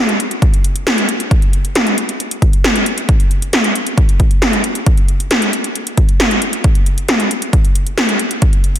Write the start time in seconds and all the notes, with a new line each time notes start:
0.09 closed hi-hat
0.20 closed hi-hat
0.31 closed hi-hat
0.42 kick, closed hi-hat
0.54 closed hi-hat
0.64 closed hi-hat
0.76 closed hi-hat
0.87 snare, closed hi-hat
0.98 closed hi-hat
1.09 closed hi-hat
1.20 closed hi-hat
1.31 kick, closed hi-hat
1.42 closed hi-hat
1.53 closed hi-hat
1.65 closed hi-hat
1.75 snare, closed hi-hat
1.87 closed hi-hat
1.98 closed hi-hat
2.09 closed hi-hat
2.20 closed hi-hat
2.31 closed hi-hat
2.42 kick, closed hi-hat
2.53 closed hi-hat
2.64 snare, closed hi-hat
2.76 closed hi-hat
2.86 closed hi-hat
2.98 closed hi-hat
3.09 kick, closed hi-hat
3.20 closed hi-hat
3.31 closed hi-hat
3.42 closed hi-hat
3.53 snare, closed hi-hat
3.64 closed hi-hat
3.75 closed hi-hat
3.87 closed hi-hat
3.98 kick, closed hi-hat
4.09 closed hi-hat
4.20 kick, closed hi-hat
4.31 closed hi-hat
4.42 snare, closed hi-hat
4.53 closed hi-hat
4.64 closed hi-hat
4.75 closed hi-hat
4.86 kick, closed hi-hat
4.97 closed hi-hat
5.08 closed hi-hat
5.20 closed hi-hat
5.31 snare, closed hi-hat
5.42 closed hi-hat
5.53 closed hi-hat
5.64 closed hi-hat
5.76 closed hi-hat
5.87 closed hi-hat
5.97 kick, closed hi-hat
6.09 closed hi-hat
6.20 snare, closed hi-hat
6.31 closed hi-hat
6.42 closed hi-hat
6.53 closed hi-hat
6.64 kick, closed hi-hat
6.75 closed hi-hat
6.86 closed hi-hat
6.98 closed hi-hat
7.08 snare, closed hi-hat
7.20 closed hi-hat
7.31 closed hi-hat
7.42 closed hi-hat
7.53 kick, closed hi-hat
7.65 closed hi-hat
7.75 closed hi-hat
7.87 closed hi-hat
7.98 snare, closed hi-hat
8.09 closed hi-hat
8.19 closed hi-hat
8.31 closed hi-hat
8.42 kick, closed hi-hat
8.53 closed hi-hat
8.64 closed hi-hat
8.76 closed hi-hat